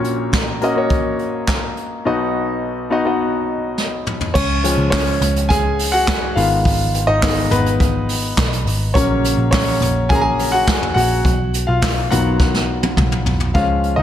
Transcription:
Already playing: grand piano A#1 A#2 A#3 C#4 F#4 C#5
0.04 closed hi-hat
0.33 kick, snare, clap, closed hi-hat
0.61 grand piano A#3 C#4 F#4 D#5, closed hi-hat
0.76 grand piano A#3 C#4 F#4 C#5
0.90 kick, closed hi-hat
1.19 closed hi-hat
1.48 kick, snare, clap, closed hi-hat
1.77 closed hi-hat
2.05 grand piano B1 B2 B3 D#4 F#4 D#5
2.90 grand piano B3 D#4 F#4 D#5
3.05 grand piano B3 D#4 F#4 D#5
3.78 snare
4.07 mid tom
4.21 floor tom
4.34 picked electric bass C#2, grand piano C#4 C#5, kick, crash
4.63 grand piano F3 G#3 C#4, hi-hat pedal, open hi-hat
4.78 picked electric bass C#2
4.90 grand piano C#4 C#5, kick, snare, clap, hi-hat pedal, open hi-hat
5.08 open hi-hat
5.21 picked electric bass C#2, floor tom, hi-hat pedal, open hi-hat
5.36 hi-hat pedal
5.49 grand piano G#4 G#5, kick, hi-hat pedal, open hi-hat
5.79 hi-hat pedal, open hi-hat
5.92 grand piano F#4 F#5
6.08 kick, snare, clap
6.35 picked electric bass G#1, grand piano D#3 G#3 B3 F4 F5, hi-hat pedal, open hi-hat
6.65 picked electric bass G#1, kick, hi-hat pedal, open hi-hat
6.94 hi-hat pedal, open hi-hat
7.07 picked electric bass G#1, grand piano D#4 D#5
7.22 grand piano D#3 G#3 B3, kick, snare, clap, hi-hat pedal, open hi-hat
7.38 open hi-hat
7.51 picked electric bass G#1, grand piano B3 B4, floor tom, hi-hat pedal, open hi-hat
7.66 hi-hat pedal
7.80 kick, hi-hat pedal, open hi-hat
8.09 hi-hat pedal, open hi-hat
8.23 open hi-hat
8.37 picked electric bass B1, kick, snare, clap, hi-hat pedal, open hi-hat
8.52 hi-hat pedal
8.65 picked electric bass G#1, hi-hat pedal, open hi-hat
8.94 picked electric bass A#1, grand piano C#3 F#3 A#3 C#4 C#5, kick, hi-hat pedal, open hi-hat
9.24 hi-hat pedal, open hi-hat
9.37 picked electric bass A#1
9.51 grand piano C#4 C#5, kick, snare, clap, hi-hat pedal, open hi-hat
9.81 picked electric bass A#1, floor tom, hi-hat pedal, open hi-hat
10.09 grand piano C#3 F#3 A#3 G#4 G#5, kick, hi-hat pedal, open hi-hat
10.15 grand piano A#5
10.21 grand piano G#4 G#5
10.39 hi-hat pedal, open hi-hat
10.52 grand piano F#4 F#5
10.67 kick, snare, clap, hi-hat pedal, open hi-hat
10.82 floor tom
10.94 picked electric bass A#1, grand piano F#4 F#5, hi-hat pedal, open hi-hat
11.25 picked electric bass B1, kick, hi-hat pedal, open hi-hat
11.53 hi-hat pedal, open hi-hat
11.67 picked electric bass B1, grand piano F4 F5
11.82 kick, snare, clap, hi-hat pedal, open hi-hat
12.10 picked electric bass B1, grand piano D#3 F#3 B3 F#4 F#5, floor tom, hi-hat pedal, open hi-hat
12.40 kick, snare
12.54 snare
12.83 high tom
12.97 picked electric bass B1, kick, mid tom
13.12 mid tom
13.26 picked electric bass B1, floor tom
13.40 floor tom
13.54 picked electric bass C#2, grand piano F3 G#3 C#4 F4 F5, kick, closed hi-hat
13.83 closed hi-hat
13.96 picked electric bass C#2, grand piano D#4 D#5

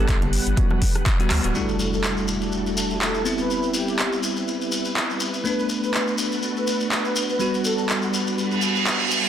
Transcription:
Already playing: analog synth bass G1, tine electric piano G3 B3, string machine G3 D4 B4 F#5, soft synth lead A4
0.00 tine electric piano G4
0.08 kick, clap, closed hi-hat
0.22 closed hi-hat, low conga
0.33 open hi-hat
0.46 analog synth bass G1, closed hi-hat
0.57 tine electric piano G3 B3 F#4, kick, closed hi-hat
0.70 cross-stick, high conga
0.82 kick, open hi-hat, high conga
0.95 cross-stick, closed hi-hat
1.06 kick, clap, closed hi-hat
1.19 tine electric piano G3 B3 F#4, closed hi-hat
1.30 analog synth bass D2, clap, open hi-hat, high conga
1.43 analog synth bass D1, tine electric piano G3 B3 F#4, closed hi-hat
1.54 tine electric piano G3 A3 D4 E4 F#4, string machine G3 D4 E4 F#4 A4, soft synth lead A4, impact, shekere
1.69 shekere
1.79 shekere
1.93 soft synth lead A4, shekere
2.04 clap, shekere
2.17 shekere
2.28 shekere
2.41 shekere
2.52 shekere
2.66 soft synth lead A4, shekere
2.77 shekere
2.90 shekere
3.01 soft synth lead A4, clap, shekere
3.14 shekere
3.24 tine electric piano B3 C4 E4, string machine B4, shekere
3.38 soft synth lead B4, shekere
3.50 shekere
3.63 shekere
3.74 soft synth lead G4, shekere
3.88 shekere
3.99 clap, shekere
4.12 shekere
4.23 shekere
4.36 shekere
4.48 shekere
4.61 shekere
4.72 shekere
4.85 shekere
4.96 clap, shekere
5.10 shekere
5.20 shekere
5.34 shekere
5.44 tine electric piano A3 B3 D4, string machine A3 D4 F#4, soft synth lead B4, shekere
5.59 shekere
5.69 shekere
5.83 soft synth lead B4, shekere
5.94 clap, shekere
6.07 shekere
6.18 shekere
6.32 shekere
6.43 shekere
6.56 soft synth lead B4, shekere
6.67 shekere
6.80 shekere
6.91 soft synth lead B4, clap, shekere
7.05 shekere
7.16 shekere
7.29 soft synth lead B4, shekere
7.39 tine electric piano G3 B3 F#4, string machine G3 D4 B4, shekere
7.54 shekere
7.64 soft synth lead A4, shekere
7.78 shekere
7.89 clap, shekere
8.02 shekere
8.14 shekere
8.27 shekere
8.38 reverse cymbal, shekere
8.51 shekere
8.62 shekere
8.75 shekere
8.86 clap, shekere
9.00 shekere
9.11 shekere
9.24 shekere

